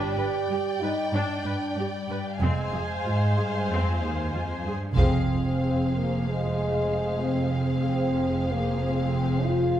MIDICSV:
0, 0, Header, 1, 8, 480
1, 0, Start_track
1, 0, Tempo, 641026
1, 1807, Time_signature, 4, 2, 24, 8
1, 7336, End_track
2, 0, Start_track
2, 0, Title_t, "Violin section"
2, 0, Program_c, 0, 48
2, 0, Note_on_c, 0, 74, 40
2, 0, Note_on_c, 0, 79, 45
2, 1772, Note_off_c, 0, 74, 0
2, 1798, Note_on_c, 0, 77, 35
2, 1803, Note_off_c, 0, 79, 0
2, 1803, Note_on_c, 0, 80, 37
2, 3544, Note_off_c, 0, 80, 0
2, 3571, Note_off_c, 0, 77, 0
2, 3710, Note_on_c, 0, 72, 57
2, 7336, Note_off_c, 0, 72, 0
2, 7336, End_track
3, 0, Start_track
3, 0, Title_t, "Violin section"
3, 0, Program_c, 1, 48
3, 3715, Note_on_c, 1, 77, 60
3, 7336, Note_off_c, 1, 77, 0
3, 7336, End_track
4, 0, Start_track
4, 0, Title_t, "Viola section"
4, 0, Program_c, 2, 48
4, 0, Note_on_c, 2, 62, 57
4, 0, Note_on_c, 2, 71, 40
4, 121, Note_off_c, 2, 62, 0
4, 128, Note_off_c, 2, 71, 0
4, 137, Note_on_c, 2, 71, 34
4, 197, Note_off_c, 2, 71, 0
4, 383, Note_on_c, 2, 67, 37
4, 443, Note_off_c, 2, 67, 0
4, 625, Note_on_c, 2, 71, 42
4, 685, Note_off_c, 2, 71, 0
4, 856, Note_on_c, 2, 62, 48
4, 1075, Note_off_c, 2, 62, 0
4, 1093, Note_on_c, 2, 71, 36
4, 1153, Note_off_c, 2, 71, 0
4, 1342, Note_on_c, 2, 67, 39
4, 1402, Note_off_c, 2, 67, 0
4, 1579, Note_on_c, 2, 71, 35
4, 1638, Note_off_c, 2, 71, 0
4, 1808, Note_on_c, 2, 60, 44
4, 1813, Note_on_c, 2, 72, 44
4, 2031, Note_off_c, 2, 60, 0
4, 2049, Note_on_c, 2, 68, 28
4, 2109, Note_off_c, 2, 68, 0
4, 2283, Note_on_c, 2, 65, 34
4, 2343, Note_off_c, 2, 65, 0
4, 2524, Note_on_c, 2, 68, 32
4, 2584, Note_off_c, 2, 68, 0
4, 2784, Note_on_c, 2, 60, 46
4, 2999, Note_off_c, 2, 60, 0
4, 3013, Note_on_c, 2, 68, 35
4, 3073, Note_off_c, 2, 68, 0
4, 3257, Note_on_c, 2, 65, 34
4, 3317, Note_off_c, 2, 65, 0
4, 3497, Note_on_c, 2, 68, 38
4, 3549, Note_off_c, 2, 72, 0
4, 3557, Note_off_c, 2, 68, 0
4, 3719, Note_on_c, 2, 68, 52
4, 7336, Note_off_c, 2, 68, 0
4, 7336, End_track
5, 0, Start_track
5, 0, Title_t, "French horn section"
5, 0, Program_c, 3, 60
5, 0, Note_on_c, 3, 67, 65
5, 593, Note_off_c, 3, 67, 0
5, 601, Note_on_c, 3, 63, 58
5, 844, Note_off_c, 3, 63, 0
5, 850, Note_on_c, 3, 62, 53
5, 1329, Note_off_c, 3, 62, 0
5, 1334, Note_on_c, 3, 55, 52
5, 1810, Note_off_c, 3, 55, 0
5, 1816, Note_on_c, 3, 56, 55
5, 3491, Note_off_c, 3, 56, 0
5, 3737, Note_on_c, 3, 60, 70
5, 4422, Note_off_c, 3, 60, 0
5, 4451, Note_on_c, 3, 58, 54
5, 4689, Note_off_c, 3, 58, 0
5, 4692, Note_on_c, 3, 56, 67
5, 5388, Note_on_c, 3, 60, 57
5, 5409, Note_off_c, 3, 56, 0
5, 5632, Note_off_c, 3, 60, 0
5, 5641, Note_on_c, 3, 60, 62
5, 6349, Note_off_c, 3, 60, 0
5, 6368, Note_on_c, 3, 58, 60
5, 6605, Note_on_c, 3, 60, 70
5, 6607, Note_off_c, 3, 58, 0
5, 7072, Note_on_c, 3, 65, 77
5, 7076, Note_off_c, 3, 60, 0
5, 7336, Note_off_c, 3, 65, 0
5, 7336, End_track
6, 0, Start_track
6, 0, Title_t, "Cello section"
6, 0, Program_c, 4, 48
6, 125, Note_on_c, 4, 43, 36
6, 185, Note_off_c, 4, 43, 0
6, 364, Note_on_c, 4, 43, 37
6, 424, Note_off_c, 4, 43, 0
6, 603, Note_on_c, 4, 43, 33
6, 663, Note_off_c, 4, 43, 0
6, 841, Note_on_c, 4, 43, 47
6, 901, Note_off_c, 4, 43, 0
6, 1079, Note_on_c, 4, 43, 35
6, 1138, Note_off_c, 4, 43, 0
6, 1313, Note_on_c, 4, 43, 32
6, 1373, Note_off_c, 4, 43, 0
6, 1563, Note_on_c, 4, 43, 34
6, 1623, Note_off_c, 4, 43, 0
6, 1798, Note_on_c, 4, 41, 49
6, 1858, Note_off_c, 4, 41, 0
6, 2038, Note_on_c, 4, 41, 33
6, 2098, Note_off_c, 4, 41, 0
6, 2281, Note_on_c, 4, 44, 45
6, 2507, Note_off_c, 4, 44, 0
6, 2520, Note_on_c, 4, 43, 43
6, 2763, Note_off_c, 4, 43, 0
6, 2764, Note_on_c, 4, 41, 48
6, 3002, Note_on_c, 4, 39, 43
6, 3005, Note_off_c, 4, 41, 0
6, 3237, Note_on_c, 4, 41, 43
6, 3244, Note_off_c, 4, 39, 0
6, 3482, Note_off_c, 4, 41, 0
6, 3485, Note_on_c, 4, 43, 42
6, 3725, Note_off_c, 4, 43, 0
6, 3725, Note_on_c, 4, 41, 57
6, 7336, Note_off_c, 4, 41, 0
6, 7336, End_track
7, 0, Start_track
7, 0, Title_t, "Double bass section"
7, 0, Program_c, 5, 48
7, 0, Note_on_c, 5, 31, 52
7, 108, Note_off_c, 5, 31, 0
7, 1795, Note_on_c, 5, 29, 43
7, 2023, Note_off_c, 5, 29, 0
7, 3712, Note_on_c, 5, 29, 62
7, 7336, Note_off_c, 5, 29, 0
7, 7336, End_track
8, 0, Start_track
8, 0, Title_t, "Taiko and cinematic ensemble drums"
8, 3721, Note_on_c, 9, 41, 54
8, 3796, Note_off_c, 9, 41, 0
8, 7336, End_track
0, 0, End_of_file